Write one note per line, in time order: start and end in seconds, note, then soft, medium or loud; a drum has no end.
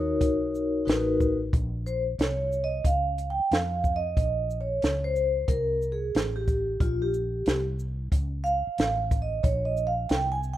0.00 0.21 D#2 loud
0.00 0.82 D#4 medium
0.00 0.82 F#4 medium
0.00 0.83 A#4 medium
0.00 0.83 C#5 medium
0.21 0.84 B1 loud
0.21 kick loud
0.21 closed hi-hat medium
0.55 shaker soft
0.85 1.50 A1 medium
0.85 1.36 D#4 medium
0.85 1.37 F#4 medium
0.85 1.37 A#4 medium
0.85 1.37 B4 medium
0.85 closed hi-hat medium
0.89 snare loud
1.20 kick medium
1.20 shaker medium
1.53 2.16 A#1 loud
1.53 kick loud
1.53 closed hi-hat medium
1.86 2.01 C5 medium
1.86 shaker medium
2.18 2.81 C2 medium
2.18 2.65 C#5 medium
2.18 snare loud
2.18 closed hi-hat medium
2.52 shaker medium
2.64 2.84 D#5 loud
2.84 3.36 C#2 medium
2.84 3.27 F5 loud
2.84 kick medium
2.84 closed hi-hat medium
3.18 closed hi-hat medium
3.18 shaker medium
3.30 3.50 G5 loud
3.39 muted fretless electric bass stroke soft
3.51 4.14 F2 medium
3.51 3.97 F5 loud
3.51 snare loud
3.51 closed hi-hat medium
3.84 kick medium
3.84 shaker medium
3.96 4.57 D#5 medium
4.17 4.79 A#1 loud
4.17 kick loud
4.17 closed hi-hat medium
4.50 shaker medium
4.61 5.02 C#5 medium
4.82 5.46 C#2 loud
4.82 snare loud
4.82 closed hi-hat medium
5.04 5.50 C5 medium
5.16 shaker medium
5.48 6.11 C2 medium
5.48 5.94 A#4 medium
5.48 kick medium
5.48 closed hi-hat medium
5.82 shaker medium
5.92 6.38 G#4 medium
6.15 6.77 A1 loud
6.15 snare loud
6.15 closed hi-hat medium
6.36 6.82 G4 medium
6.48 kick medium
6.48 closed hi-hat medium
6.48 shaker medium
6.80 7.43 A#1 loud
6.80 7.03 F4 medium
6.80 kick loud
6.80 closed hi-hat medium
7.02 7.64 G4 medium
7.14 shaker medium
7.46 8.09 C2 loud
7.46 snare loud
7.46 closed hi-hat medium
7.79 shaker medium
8.12 8.64 C#2 medium
8.12 kick loud
8.12 closed hi-hat medium
8.44 9.18 F5 loud
8.44 shaker medium
8.67 muted fretless electric bass stroke soft
8.78 9.41 A1 loud
8.78 snare loud
8.78 closed hi-hat medium
9.11 kick medium
9.11 closed hi-hat medium
9.11 shaker medium
9.22 9.45 D#5 medium
9.43 10.07 A#1 loud
9.43 9.66 C#5 medium
9.43 kick loud
9.43 closed hi-hat medium
9.65 9.86 D#5 medium
9.77 shaker medium
9.87 10.10 F5 loud
10.09 10.57 C2 loud
10.09 10.19 G5 medium
10.09 snare loud
10.09 closed hi-hat medium
10.32 10.55 G#5 loud
10.43 shaker medium
10.53 10.57 G5 loud